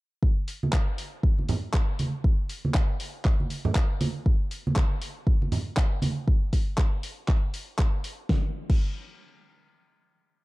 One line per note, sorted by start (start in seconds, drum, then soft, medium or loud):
0.23 kick loud
0.48 open hi-hat loud
0.63 high conga medium
0.73 kick loud
0.73 clap loud
0.98 open hi-hat loud
1.23 kick loud
1.39 high conga medium
1.49 open hi-hat loud
1.49 low conga medium
1.74 kick loud
1.74 clap loud
1.99 open hi-hat loud
1.99 high conga medium
2.24 kick loud
2.49 open hi-hat loud
2.65 high conga medium
2.74 kick loud
2.74 clap loud
3.00 open hi-hat loud
3.25 kick loud
3.25 clap medium
3.40 high conga medium
3.50 open hi-hat loud
3.65 low conga medium
3.75 kick loud
3.75 clap loud
4.01 open hi-hat loud
4.01 high conga loud
4.26 kick loud
4.51 open hi-hat loud
4.67 high conga medium
4.76 kick loud
4.76 clap loud
5.02 open hi-hat loud
5.27 kick loud
5.42 high conga medium
5.52 open hi-hat loud
5.52 low conga medium
5.77 kick loud
5.77 clap loud
6.02 open hi-hat loud
6.02 high conga medium
6.28 kick loud
6.53 kick medium
6.53 open hi-hat loud
6.78 kick loud
6.78 clap loud
7.03 open hi-hat loud
7.28 kick loud
7.28 clap medium
7.54 open hi-hat loud
7.79 kick loud
7.79 clap loud
8.04 open hi-hat loud
8.29 kick loud
8.29 snare medium
8.70 kick loud
8.70 crash medium